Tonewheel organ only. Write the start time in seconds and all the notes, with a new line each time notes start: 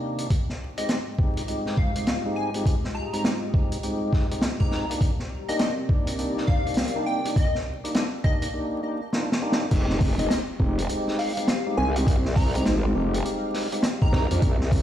Already playing: C3 A#3 D4 D#4 G4
0.78 G#3 C4 D#4 G4
1.19 G#3 C4 D#4 G4
1.48 G#3 C4 D#4 G4
1.96 G#3 C4 D#4 G4
2.25 G#3 C4 D#4 G4
2.55 G#3 C4 D#4 G4
3.14 G#3 C4 D#4 G4
3.54 G#3 C4 D#4 G4
3.83 G#3 C4 D#4 G4
4.31 G#3 C4 D#4 G4
4.61 G#3 C4 D#4 G4
4.90 A#3 D4 D#4 G4
5.49 A#3 D4 D#4 G4
5.89 A#3 D4 D#4 G4
6.19 A#3 D4 D#4 G4
6.66 A#3 D4 D#4 G4
6.96 A#3 D4 D#4 G4
7.25 A#3 D4 D#4 G4
7.84 A#3 D4 D#4 G4
8.24 A#3 D4 D#4 G4
8.54 A#3 D4 D#4 G4
8.83 A#3 D4 D#4 G4
9.13 A#3 D4 D#4 F4
9.42 A#3 D4 D#4 G4
9.72 G#3 C4 D#4 G4
10.20 G#3 C4 D#4 G4
10.60 G#3 C4 D#4 G4
10.89 G#3 C4 D#4 G4
11.37 G#3 C4 D#4 G4
11.66 G#3 C4 D#4 G4
11.96 G#3 C4 D#4 G4
12.55 G#3 C4 D#4 G4
12.95 G#3 C4 D#4 G4
13.25 G#3 C4 D#4 G4
13.72 G#3 C4 D#4 G4
14.02 G#3 C4 D#4 G4
14.31 A#3 D4 D#4 G4